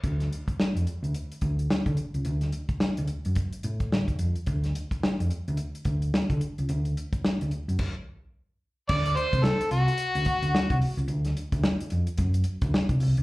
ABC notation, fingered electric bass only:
X:1
M:4/4
L:1/16
Q:"Swing 16ths" 1/4=108
K:Dmix
V:1 name="Fingered electric bass" clef=bass
D,,2 z3 =F,, z D,, z2 D,,2 z D, z ^C,, | D,,2 z3 D,, z F,, z2 A,,2 D,,2 =F,, z | D,,2 z3 =F,, z D,, z2 D,,2 z D, z ^C,, | D,,2 z3 D,, z F,, z8 |
D,,2 z C,, z2 C,, z2 D,, z D,, z C,, z ^C,, | D,,2 z D,, z2 ^E,, z F,,2 z D,, z C,, C,, ^C,, |]